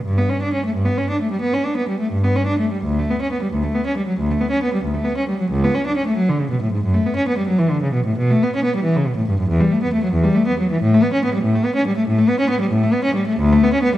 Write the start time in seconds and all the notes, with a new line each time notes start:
0.05 G2
0.18 B3
0.29 C#4
0.42 D4
0.54 C#4
0.66 A3
0.75 G2
0.86 B3
0.98 C#4
1.10 D4
1.22 A3
1.31 G3
1.41 B3
1.53 C#4
1.66 D4
1.77 B3
1.89 G3
2.00 A3
2.12 G2
2.24 B3
2.36 C#4
2.47 D4
2.59 A3
2.72 G3
2.84 D2
2.99 A3
3.11 B3
3.22 C#4
3.32 B3
3.42 G3
3.53 D2
3.63 A3
3.75 B3
3.86 C#4
3.97 G3
4.08 F#3
4.20 D2
4.31 A3
4.41 B3
4.51 C#4
4.63 B3
4.74 G3
4.84 D2
4.94 A3
5.05 B3
5.17 C#4
5.29 G3
5.40 F#3
5.51 C#2
5.64 B3
5.75 C#4
5.87 D4
5.97 C#4
6.07 A3
6.17 F#3
6.29 D3
6.40 C#3
6.51 B2
6.62 A2
6.73 G#2
6.84 F#2
6.94 A3
7.06 B3
7.16 C#4
7.28 B3
7.38 G3
7.48 F#3
7.59 E3
7.70 D3
7.82 C#3
7.94 B2
8.06 A2
8.18 B2
8.30 A3
8.43 B3
8.56 C#4
8.64 B3
8.76 G3
8.84 E3
8.96 C#3
9.07 B2
9.17 A2
9.29 G2
9.40 F#2
9.49 E2
9.60 G3
9.72 A3
9.83 B3
9.93 A3
10.04 F#3
10.13 E2
10.24 G3
10.35 A3
10.47 B3
10.60 F#3
10.72 E3
10.82 A2
10.94 A3
11.03 B3
11.13 C#4
11.25 B3
11.34 G3
11.43 A2
11.55 A3
11.65 B3
11.75 C#4
11.87 G3
11.97 A3
12.08 A2
12.19 A3
12.29 B3
12.40 C#4
12.50 B3
12.61 G3
12.71 A2
12.83 A3
12.93 B3
13.04 C#4
13.15 G3
13.27 A3
13.39 D2
13.53 A3
13.64 B3
13.73 C#4
13.83 B3